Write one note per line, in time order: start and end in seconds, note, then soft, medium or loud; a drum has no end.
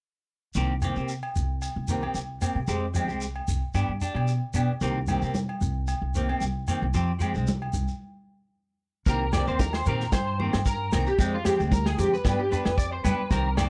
0.54 0.90 C2 medium
0.54 0.72 D#3 medium
0.54 0.72 A#3 medium
0.54 0.73 C4 medium
0.54 0.73 G4 medium
0.54 shekere medium
0.82 0.96 D#3 soft
0.82 0.97 A#3 medium
0.82 0.97 C4 medium
0.82 0.95 G4 medium
0.82 low agogo soft
0.82 shekere medium
0.96 1.19 C3 medium
0.96 1.13 A#3 soft
0.96 1.12 C4 soft
0.96 1.12 G4 soft
0.96 shekere soft
1.09 shekere medium
1.23 low agogo medium
1.36 1.70 C2 medium
1.36 shekere medium
1.62 low agogo soft
1.62 shekere medium
1.76 2.09 C2 medium
1.88 2.03 D#3 medium
1.88 2.03 A#3 medium
1.88 2.03 C4 medium
1.88 2.01 G4 medium
1.88 shekere medium
2.02 2.19 A#3 soft
2.02 2.18 C4 soft
2.02 2.18 G4 soft
2.02 low agogo medium
2.15 2.37 C2 medium
2.15 shekere medium
2.41 2.58 A#3 medium
2.41 2.59 C4 medium
2.41 2.59 G4 medium
2.41 muted clean electric guitar stroke soft
2.41 low agogo medium
2.41 shekere loud
2.55 2.66 C3 medium
2.68 3.09 F2 medium
2.68 2.85 G#3 medium
2.68 2.85 C4 medium
2.68 2.85 G4 medium
2.68 muted clean electric guitar stroke medium
2.68 shekere medium
2.94 3.08 F3 medium
2.94 3.09 G#3 medium
2.94 3.08 C4 medium
2.94 3.07 G4 medium
2.94 low agogo soft
2.94 shekere medium
3.08 3.42 C2 medium
3.08 3.25 G#3 soft
3.08 3.24 C4 soft
3.08 3.24 G4 soft
3.08 shekere soft
3.21 shekere medium
3.36 low agogo soft
3.48 3.60 C2 medium
3.48 shekere medium
3.74 3.86 G2 medium
3.74 3.91 B3 medium
3.74 3.91 D4 medium
3.74 3.92 G4 medium
3.74 low agogo medium
3.74 shekere medium
3.89 3.99 G2 medium
4.01 4.15 D4 medium
4.01 4.13 G4 medium
4.01 shekere medium
4.14 4.38 B2 medium
4.14 4.31 D4 soft
4.14 4.30 G4 medium
4.14 low agogo medium
4.28 shekere medium
4.54 4.66 B2 medium
4.54 4.71 B3 medium
4.54 4.71 D4 medium
4.54 4.72 G4 medium
4.54 low agogo medium
4.54 shekere medium
4.81 5.16 C2 loud
4.81 4.98 D#3 medium
4.81 4.98 A#3 medium
4.81 4.99 C4 medium
4.81 4.99 G4 medium
4.81 muted conga soft
4.81 shekere soft
5.07 5.22 D#3 medium
5.07 5.23 A#3 medium
5.07 5.23 C4 medium
5.07 5.21 G4 medium
5.07 high conga medium
5.07 low agogo medium
5.07 shekere medium
5.22 5.44 C3 medium
5.22 5.39 A#3 soft
5.22 5.38 C4 soft
5.22 5.37 G4 soft
5.22 shekere soft
5.35 muted conga soft
5.35 high conga medium
5.35 shekere medium
5.49 low agogo medium
5.61 5.96 C2 medium
5.61 shekere medium
5.88 muted conga soft
5.88 low agogo medium
5.88 shekere medium
6.02 6.35 C2 medium
6.14 6.29 D#3 medium
6.14 6.29 A#3 medium
6.14 6.29 C4 medium
6.14 6.28 G4 medium
6.14 muted conga soft
6.14 shekere medium
6.29 6.45 A#3 soft
6.29 6.45 C4 soft
6.29 6.44 G4 soft
6.29 low agogo medium
6.40 6.64 C2 medium
6.40 high conga medium
6.40 shekere medium
6.68 6.84 D#3 medium
6.68 6.85 A#3 medium
6.68 6.85 C4 medium
6.68 6.85 G4 medium
6.68 low agogo soft
6.68 shekere medium
6.82 6.93 C2 medium
6.94 7.36 F2 medium
6.94 7.11 F3 medium
6.94 7.11 C4 medium
6.94 7.12 G4 medium
6.94 muted clean electric guitar stroke medium
6.94 muted conga soft
6.94 shekere medium
7.19 7.34 F3 medium
7.19 7.35 G#3 medium
7.19 7.34 C4 medium
7.19 7.33 G4 medium
7.19 low conga medium
7.19 low agogo soft
7.19 shekere medium
7.34 7.68 C2 medium
7.34 7.51 G#3 soft
7.34 7.50 C4 soft
7.34 muted clean electric guitar stroke medium
7.34 shekere soft
7.47 muted conga soft
7.47 high conga medium
7.47 shekere medium
7.62 low agogo soft
7.73 7.86 C2 medium
7.73 high conga medium
7.73 shekere medium
7.88 shekere soft
9.06 9.41 C2 medium
9.06 9.24 D#3 medium
9.06 9.24 A#3 medium
9.06 9.24 C4 medium
9.06 9.24 G4 medium
9.06 9.32 A#4 medium
9.06 kick medium
9.06 muted conga soft
9.06 shekere medium
9.33 9.48 D#3 medium
9.33 9.48 A#3 medium
9.33 9.47 C4 medium
9.33 9.46 G4 medium
9.33 9.47 D5 medium
9.33 snare medium
9.33 low agogo medium
9.33 shekere medium
9.47 9.80 D#2 medium
9.47 9.63 A#3 soft
9.47 9.63 C4 soft
9.47 9.62 G4 medium
9.47 9.60 C5 medium
9.47 shekere soft
9.59 9.73 A#4 medium
9.59 kick medium
9.59 high conga loud
9.59 shekere medium
9.73 9.86 C5 medium
9.73 snare medium
9.73 low agogo medium
9.86 10.09 A#2 medium
9.86 10.03 D#3 medium
9.86 10.04 A#3 medium
9.86 10.04 C4 medium
9.86 10.04 G4 medium
9.86 10.12 A#4 medium
9.86 shekere loud
10.00 snare soft
10.00 shekere soft
10.12 10.47 G2 medium
10.12 10.38 C5 medium
10.12 kick medium
10.12 snare medium
10.12 muted conga soft
10.12 low agogo medium
10.12 shekere medium
10.40 10.56 D#3 medium
10.40 10.57 A#3 medium
10.40 10.57 C4 medium
10.40 10.57 G4 medium
10.40 10.65 C5 medium
10.40 muted conga soft
10.40 high conga medium
10.53 10.87 G2 medium
10.53 snare medium
10.53 low agogo medium
10.53 shekere soft
10.66 10.91 A#4 medium
10.66 kick medium
10.66 high conga medium
10.66 shekere medium
10.92 11.05 C2 medium
10.92 11.09 D#3 medium
10.92 11.09 A#3 medium
10.92 11.10 C4 medium
10.92 11.06 A#4 medium
10.92 muted clean electric guitar stroke medium
10.92 snare medium
10.92 muted conga soft
10.92 low agogo medium
10.92 shekere medium
11.07 11.17 G4 medium
11.07 shekere soft
11.19 11.53 F2 medium
11.19 11.35 F3 medium
11.19 11.36 G#3 medium
11.19 11.36 C4 medium
11.19 11.36 G4 medium
11.19 muted clean electric guitar stroke medium
11.19 kick medium
11.19 muted conga soft
11.19 shekere medium
11.34 11.45 F4 medium
11.44 11.59 F3 medium
11.44 11.59 G#3 medium
11.44 11.58 C4 medium
11.44 11.59 G4 medium
11.44 11.57 G4 medium
11.44 snare medium
11.44 low agogo medium
11.44 shekere medium
11.58 11.93 D2 medium
11.58 11.75 G#3 soft
11.58 11.75 C4 soft
11.58 11.74 G4 medium
11.58 shekere soft
11.72 11.85 A#4 medium
11.72 kick medium
11.72 high conga loud
11.72 shekere medium
11.86 11.98 G#4 medium
11.86 snare medium
11.86 low agogo medium
11.97 12.10 D3 medium
11.97 12.14 F3 medium
11.97 12.15 G#3 medium
11.97 12.15 C4 medium
11.97 12.12 G4 medium
11.97 12.15 G4 medium
11.97 low conga medium
11.97 shekere loud
12.13 12.38 B4 medium
12.13 shekere soft
12.24 12.47 G2 medium
12.24 12.41 B3 medium
12.24 12.41 D4 medium
12.24 12.42 G4 medium
12.24 kick medium
12.24 snare medium
12.24 muted conga soft
12.24 high conga medium
12.24 low agogo medium
12.24 shekere medium
12.39 12.51 G4 medium
12.51 12.68 B3 medium
12.51 12.68 D4 medium
12.51 12.69 G4 medium
12.51 12.77 B4 medium
12.51 muted conga soft
12.51 shekere medium
12.65 12.99 F2 medium
12.65 snare medium
12.65 low agogo medium
12.65 shekere soft
12.78 12.91 D5 medium
12.78 kick medium
12.78 shekere medium
12.92 13.04 C5 medium
13.04 13.16 G3 loud
13.04 13.21 B3 medium
13.04 13.21 D4 medium
13.04 13.22 G4 medium
13.04 13.30 B4 medium
13.04 muted conga soft
13.04 high conga medium
13.04 low agogo medium
13.04 shekere medium
13.31 13.65 C2 medium
13.31 13.47 D#3 medium
13.31 13.48 C4 medium
13.31 13.48 G4 medium
13.31 13.56 A#4 medium
13.31 muted clean electric guitar stroke medium
13.31 kick medium
13.31 snare soft
13.31 muted conga soft
13.31 shekere medium
13.57 13.69 D#3 medium
13.57 13.69 A#3 medium
13.57 13.69 C4 medium
13.57 13.69 G4 medium
13.57 13.69 D5 medium
13.57 snare medium
13.57 low agogo medium
13.57 shekere medium